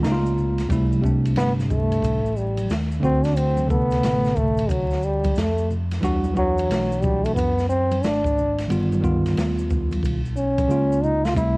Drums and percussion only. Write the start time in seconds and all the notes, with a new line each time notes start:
0.04 snare, hi-hat pedal, ride, low conga, maracas
0.26 maracas
0.38 low conga, maracas
0.58 snare, ride, maracas
0.70 kick, ride, maracas
0.92 high conga, maracas
1.04 kick, maracas
1.25 ride, maracas
1.36 snare, hi-hat pedal, ride, maracas
1.59 snare, maracas
1.70 kick, low conga, maracas
1.92 ride, maracas
2.02 kick, ride, maracas
2.26 maracas
2.37 maracas
2.57 ride, high conga, maracas
2.70 snare, hi-hat pedal, ride, maracas
2.91 maracas
3.03 kick, low conga, maracas
3.24 snare, ride, maracas
3.36 ride, maracas
3.57 high conga, maracas
3.70 kick, maracas
3.91 snare, ride, maracas
4.03 snare, hi-hat pedal, ride, maracas
4.24 snare, maracas
4.36 kick, low conga, maracas
4.57 ride, maracas
4.69 kick, ride, maracas
4.91 snare, maracas
5.02 maracas
5.24 kick, ride, high conga, maracas
5.35 snare, hi-hat pedal, ride, maracas
5.58 maracas
5.71 low conga, maracas
5.91 snare, ride, maracas
6.03 kick, ride, maracas
6.24 high conga, maracas
6.36 kick, maracas
6.58 ride, maracas
6.70 snare, hi-hat pedal, ride, maracas
6.92 maracas
7.02 kick, low conga, maracas
7.25 ride, maracas
7.36 kick, ride, maracas
7.58 snare, maracas
7.70 maracas
7.91 ride, high conga, maracas
8.03 snare, hi-hat pedal, ride, maracas
8.24 kick, maracas
8.38 low conga, maracas
8.58 snare, ride, maracas
8.70 ride, maracas
8.92 high conga, maracas
9.04 kick, high conga, maracas
9.26 snare, ride, maracas
9.37 snare, hi-hat pedal, ride, maracas
9.59 maracas
9.70 kick, low conga, maracas
9.92 ride, high conga, maracas
10.03 kick, ride, high conga, maracas
10.25 maracas
10.37 maracas
10.58 kick, ride, high conga, maracas
10.70 maracas
10.92 maracas
11.04 low conga, maracas
11.25 snare, maracas
11.37 kick, ride, maracas